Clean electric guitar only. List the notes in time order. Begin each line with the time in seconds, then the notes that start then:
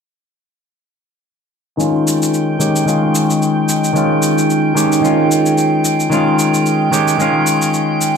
1.77 D#3 G#3 C#4 F4
2.59 D#3 G#3 C#4 G4
2.85 D#3 G#3 C#4 F4
3.93 D#3 G#3 C#4
3.97 F4
4.75 D#3 G#3 C#4 G4
5.01 D#3 G#3 C#4 F4
6.10 D#3 G#3 C#4
6.14 F4
6.91 D#3 G#3 C#4 G4
7.18 D#3 G#3 C#4
7.22 F4